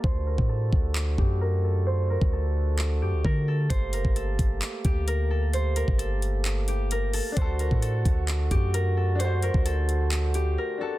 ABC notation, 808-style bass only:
X:1
M:4/4
L:1/16
Q:1/4=131
K:Dphr
V:1 name="808-style bass" clef=bass
D,,3 A,,3 D,,4 ^F,,6- | ^F,,3 D,,6- D,, F,, D,, D,4 | G,,,2 ^F,,, G,,,3 G,,,2 z2 D,,6- | D,,3 G,,,12 z |
D,,3 A,,3 D,,4 ^F,,6- | ^F,,3 D,,8- D,, z4 |]